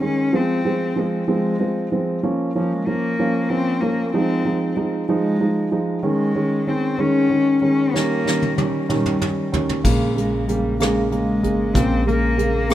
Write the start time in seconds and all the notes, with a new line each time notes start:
0.01 D#3 G#3 C#4
0.33 F3 G#3 C4
0.65 F3 G#3 C4
0.96 F3 G#3 C4
1.28 F3 G#3 C4
1.60 F3 G#3 C4
1.92 F3 G#3 C4
2.23 F3 A#3 C#4
2.55 F3 A#3 C#4
2.73 G#3
2.87 F3 A#3 C#4
3.19 F3 A#3 C#4
3.49 F3 A#3 C4 C#4
3.81 F3 A#3 C#4
4.13 F3 G#3 C4 D#4
4.45 F3 G#3 D#4
4.76 F3 G#3 D#4
5.09 F3 G#3 D#4
5.40 F3 G#3 D#4
5.72 F3 G#3 D#4
6.03 D#3 G#3 C#4
6.35 D#3 G#3 C#4
6.67 D#3 G#3 C4 C#4
6.98 D#3 G#3 C#4
7.30 D#3 G#3 C#4
7.62 D#3 G#3 C#4
7.93 D#3 G3 A#3 C#4, snare
8.25 D#3 G3 C#4, snare
8.42 high tom
8.57 D#3 G3 C#4, high tom
8.89 D#3 G3 C#4, mid tom
9.06 mid tom
9.20 D#3 G3 C#4, mid tom
9.52 D#3 G3 C#4, floor tom
9.69 floor tom
9.84 A#1 C#3 G#3 A#3, kick, crash
10.15 C#3 G#3 A#3, closed hi-hat
10.34 G#3
10.48 C#3 G3 G#3 A#3, closed hi-hat
10.80 C#3 G#3 A#3, cross-stick, closed hi-hat
11.11 C#3 G#3 A#3, closed hi-hat
11.43 G#1 C#3 G#3 A#3, closed hi-hat
11.74 A#1 C#3 G#3 A#3 C4, kick, closed hi-hat
12.05 C#3 G#3 A#3, closed hi-hat
12.37 C#3 G#3 A#3, closed hi-hat
12.69 C#3 G#3 A#3 C#4, closed hi-hat